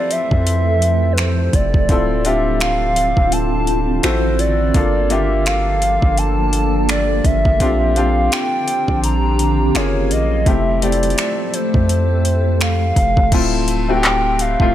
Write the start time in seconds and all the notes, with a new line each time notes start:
Already playing: F3 A3 C4 E4 G4 A4 B4 C5 D5
0.11 E5, closed hi-hat
0.31 F2, kick
0.47 closed hi-hat
0.82 closed hi-hat
1.13 B4
1.18 C5, finger snap, closed hi-hat
1.53 F1 D5, kick, closed hi-hat
1.74 F1, kick
1.89 D1 D3 C4 E4 F4 A4, kick, closed hi-hat
2.25 C4 D4 F4 G4 E5, closed hi-hat
2.60 F5, finger snap, closed hi-hat
2.96 closed hi-hat
3.17 D1, kick
3.32 A5, closed hi-hat
3.67 closed hi-hat
4.03 A1 C4 E4 F#4 A4 C5, finger snap, closed hi-hat
4.39 D5, closed hi-hat
4.74 G1 F3 A#3 D4 F4 A4, kick, closed hi-hat
5.10 A#3 D4 F4 G4 E5, closed hi-hat
5.46 F5, finger snap, closed hi-hat
5.82 closed hi-hat
6.02 G1, kick
6.17 A5, closed hi-hat
6.53 closed hi-hat
6.89 D5, finger snap, closed hi-hat
7.25 G1 E5, kick, closed hi-hat
7.45 G1, kick
7.60 A#1 D3 C4 D4 F4 G4, kick, closed hi-hat
7.96 C4 D4 F4 G4 F5, closed hi-hat
8.32 G5, finger snap, closed hi-hat
8.68 closed hi-hat
8.88 A#1, kick
9.04 A#5, closed hi-hat
9.39 closed hi-hat
9.75 F#1 A#3 C#4 F4 G#4 C#5, finger snap, closed hi-hat
10.11 A#1 D#5, closed hi-hat
10.46 F1 F3 A3 C4 E4 G4 A4 E5, kick, closed hi-hat
10.82 A3 C4 E4 G4 D5, closed hi-hat
10.92 closed hi-hat
11.03 closed hi-hat
11.10 closed hi-hat
11.18 finger snap, closed hi-hat
11.54 C5, closed hi-hat
11.74 F2, kick
11.89 closed hi-hat
12.25 closed hi-hat
12.61 F5, finger snap, closed hi-hat
12.96 F1, kick, closed hi-hat
13.17 F1, kick
13.32 D1 A3 C4 E4 F4 A5, kick, closed hi-hat, crash
13.68 closed hi-hat
13.88 A3 C4 E4 F#4 G5
13.97 G4
14.03 clap, closed hi-hat
14.39 F5, closed hi-hat
14.60 D1 A3 C4 E4 F4, kick